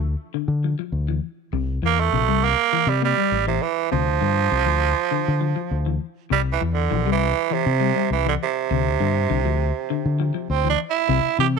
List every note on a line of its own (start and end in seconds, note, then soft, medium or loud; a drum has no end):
0.00 0.14 D2 medium
0.34 0.53 D3 medium
0.48 0.74 D3 medium
0.64 0.74 F3 medium
0.79 0.98 F3 medium
0.92 1.18 D2 medium
1.09 1.27 E3 medium
1.53 1.78 C2 medium
1.53 1.72 C3 medium
1.82 2.08 E2 loud
1.82 2.02 E3 medium
1.82 2.02 A#3 loud
2.00 2.46 A3 loud
2.12 2.28 A#1 loud
2.12 2.22 C3 medium
2.28 2.53 C2 medium
2.28 2.47 G3 medium
2.44 2.91 A#3 loud
2.73 2.91 E3 medium
2.87 3.13 C3 loud
2.87 3.04 G3 medium
3.02 3.46 G3 loud
3.02 3.12 A#3 medium
3.17 3.36 G3 medium
3.32 3.58 A1 medium
3.47 3.64 C3 medium
3.47 3.66 E3 medium
3.62 3.91 E3 medium
3.92 4.18 D2 loud
3.92 4.10 C3 medium
3.92 5.98 F3 loud
4.21 4.47 G2 loud
4.21 4.40 D3 medium
4.51 4.67 C2 loud
4.51 muted clean electric guitar stroke medium
4.66 4.92 D2 medium
4.66 4.85 F3 medium
5.11 5.30 D3 medium
5.28 5.53 D3 medium
5.41 5.51 F3 medium
5.56 5.75 F3 medium
5.71 5.97 D2 medium
5.86 6.05 E3 medium
6.30 6.57 C2 loud
6.30 6.49 C3 medium
6.30 6.41 G3 loud
6.52 6.61 E3 medium
6.61 6.87 E2 loud
6.61 6.80 E3 medium
6.73 7.10 D3 medium
6.91 7.06 A#1 loud
6.91 7.00 E3 medium
7.06 7.32 C2 medium
7.06 7.25 G3 medium
7.12 7.55 E3 loud
7.51 8.12 C3 loud
7.51 7.69 E3 medium
7.66 7.92 C3 medium
7.80 7.90 G3 medium
7.95 8.14 G3 medium
8.10 8.36 C2 medium
8.10 8.26 E3 medium
8.26 8.35 D3 medium
8.26 8.44 E3 medium
8.43 10.47 C3 medium
8.71 8.96 D2 loud
8.71 8.89 C3 medium
9.00 9.26 G2 loud
9.00 9.19 D3 medium
9.30 9.46 C2 loud
9.30 9.39 D3 medium
9.45 9.71 D2 medium
9.45 9.64 F3 medium
9.90 10.09 D3 medium
10.05 10.31 D3 medium
10.20 10.29 F3 medium
10.34 10.53 F3 medium
10.50 10.75 D2 medium
10.50 10.69 C4 medium
10.65 10.83 E3 medium
10.70 10.79 D4 medium
10.90 11.36 E4 medium
11.09 11.22 C2 loud
11.09 11.27 C3 medium
11.24 muted fingered electric bass stroke soft
11.39 11.59 C3 medium
11.39 11.57 E3 medium
11.39 11.47 G4 loud